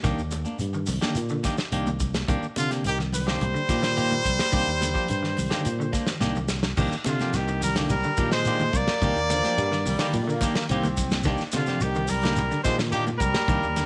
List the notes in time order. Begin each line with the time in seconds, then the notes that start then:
0.03 C2 D#3 A#3 D4 G4, kick, snare, closed hi-hat, shekere
0.18 D#2, shekere
0.31 muted clean electric guitar stroke, closed hi-hat, high conga, shekere
0.45 A#3 D4, muted clean electric guitar stroke, high conga, shekere
0.59 G2, muted clean electric guitar stroke, closed hi-hat, shekere
0.73 D#3, muted clean electric guitar stroke, shekere
0.86 C2 D#3, muted clean electric guitar stroke, open hi-hat, low conga, shekere
1.01 D3 D#3 A#3 D4 G4, snare, closed hi-hat, high conga, shekere
1.15 A#2, closed hi-hat, shekere
1.29 D3, muted clean electric guitar stroke, shekere
1.43 D#3 A#3 D4 G4, kick, snare, closed hi-hat, high conga, low conga, shekere
1.57 muted clean electric guitar stroke, snare, shekere
1.72 C2 D#3 A#3 D4 G4, closed hi-hat, shekere
1.87 D#3, high conga, shekere
2.00 muted clean electric guitar stroke, kick, closed hi-hat, low conga, shekere
2.14 muted clean electric guitar stroke, snare, closed hi-hat, high conga, shekere
2.28 C2 D#3 A#3 D4 G4, muted clean electric guitar stroke, kick, closed hi-hat, shekere
2.43 shekere
2.56 C3 D3 F4, muted clean electric guitar stroke, closed hi-hat, high conga, shekere
2.71 D3 A#3 D4 G4, snare, closed hi-hat, shekere
2.84 C2 D#3 G4, muted clean electric guitar stroke, closed hi-hat, shekere
2.99 D#3, muted clean electric guitar stroke, snare, shekere
3.13 D#3 G3 C5, muted clean electric guitar stroke, open hi-hat, low conga, shekere
3.27 D3 D#3 A#3 D4 G4, snare, shekere
3.41 C2, closed hi-hat, high conga, low conga, shekere
3.54 D3, muted clean electric guitar stroke, shekere
3.69 A#2 D#3 A#3 D4 G4, kick, snare, closed hi-hat, high conga, low conga, shekere
3.82 D#3, muted clean electric guitar stroke, snare, closed hi-hat, shekere
3.96 D#3 A#3 G4, closed hi-hat, shekere
4.11 D#3, high conga, shekere
4.25 C2, muted clean electric guitar stroke, kick, closed hi-hat, low conga, shekere
4.39 muted clean electric guitar stroke, snare, high conga, shekere
4.52 C2 D#3 A#3 D4 G4, kick, closed hi-hat, shekere
4.67 D#2, shekere
4.81 D3, muted clean electric guitar stroke, snare, closed hi-hat, high conga, shekere
4.94 F3 A#3 D4 G4, kick, shekere
5.08 G2, muted clean electric guitar stroke, closed hi-hat, shekere
5.23 D#3, muted clean electric guitar stroke, snare, shekere
5.37 C2 D#3, muted clean electric guitar stroke, open hi-hat, low conga, shekere
5.50 D3 D#3 A#3 D4 G4, snare, closed hi-hat, high conga, shekere
5.65 A#2, closed hi-hat, shekere
5.79 D3, muted clean electric guitar stroke, shekere
5.92 A#3 D4, muted clean electric guitar stroke, kick, snare, closed hi-hat, high conga, shekere
6.07 D#3, snare, high conga, shekere
6.20 C2 D#3 A#3 D4 G4, snare, high conga, shekere
6.35 D#3, low conga, shekere
6.48 muted clean electric guitar stroke, snare, low conga, shekere
6.63 muted clean electric guitar stroke, snare, low conga, shekere
6.77 C2 D#3 A#3 D4 G4, kick, crash, shekere
6.92 snare, shekere
7.04 C3 D3 F4, muted clean electric guitar stroke, snare, ride bell, high conga, shekere
7.19 F3 A#3 D4 G4, snare, high conga, shekere
7.33 C2 D#3 G4, muted clean electric guitar stroke, snare, ride bell, shekere
7.48 muted clean electric guitar stroke, shekere
7.62 D#3 G3 A#4, muted clean electric guitar stroke, open hi-hat, low conga, shekere
7.76 D3 D#3 A#3 D4 G4, snare, ride bell, high conga, shekere
7.89 C2 G3 A#4, ride bell, low conga, shekere
8.03 D3, muted clean electric guitar stroke, shekere
8.17 A#2 D#3 A#3 D4 G4, kick, ride bell, high conga, low conga, shekere
8.32 D#3 G#3 C5, muted clean electric guitar stroke, snare, shekere
8.45 D#3 A#3 D4 G4, ride bell, shekere
8.60 D#3, high conga, shekere
8.73 C2 A#3 D5, muted clean electric guitar stroke, kick, ride bell, low conga, shekere
8.87 muted clean electric guitar stroke, snare, ride bell, high conga, shekere
9.02 C2 D#3 A#3 D4 G4, kick, ride bell, shekere
9.16 D#2, shekere
9.29 D3 F3, muted clean electric guitar stroke, ride bell, high conga, shekere
9.43 F3 A#3 D4 G4, snare, ride bell, high conga, shekere
9.56 G2 G3, muted clean electric guitar stroke, ride bell, shekere
9.72 D#3, muted clean electric guitar stroke, snare, shekere
9.84 C2 D#3 G3, muted clean electric guitar stroke, open hi-hat, low conga, shekere
9.99 D3 D#3 A#3 D4 G4, snare, ride bell, shekere
10.13 A#2, ride bell, low conga, shekere
10.26 D3 A#3, muted clean electric guitar stroke, shekere
10.41 D#3 A#3 D4 G4, kick, snare, ride bell, high conga, low conga, shekere
10.55 D#3, muted clean electric guitar stroke, snare, ride bell, shekere
10.69 C2 D#3 A#3 C4 G4, ride bell, shekere
10.83 D#3, high conga, shekere
10.97 muted clean electric guitar stroke, kick, ride bell, low conga, shekere
11.10 muted clean electric guitar stroke, snare, ride bell, high conga, shekere
11.23 C2 D#3 A#3 D4 G4, kick, snare, ride bell, shekere
11.37 snare, shekere
11.52 C3 D3 F4, muted clean electric guitar stroke, snare, ride bell, high conga, shekere
11.66 F3 A#3 D4 G4, snare, high conga, shekere
11.81 C2 D#3 G4, muted clean electric guitar stroke, ride bell, shekere
11.95 D#3, muted clean electric guitar stroke, shekere
12.08 G3 A#4, muted clean electric guitar stroke, open hi-hat, low conga, shekere
12.22 D3 D#3 A#3 D4 G4, snare, ride bell, high conga, shekere
12.36 C2, ride bell, low conga, shekere
12.51 D3, muted clean electric guitar stroke, shekere
12.63 A#2 D#3 G#3 A#3 D4 G4 C5, kick, snare, ride bell, high conga, low conga, shekere
12.79 D#3, muted clean electric guitar stroke, snare, shekere
12.90 D#3 A#3 D4 G4, ride bell, shekere
13.07 muted clean electric guitar stroke, high conga, shekere
13.19 C2 G3 A#4, muted clean electric guitar stroke, kick, ride bell, low conga, shekere
13.34 muted clean electric guitar stroke, snare, ride bell, high conga, shekere
13.48 C2 D#3 A#3 D4 G4, kick, ride bell, shekere
13.63 D#2, shekere
13.76 D3, muted clean electric guitar stroke, snare, ride bell, high conga, shekere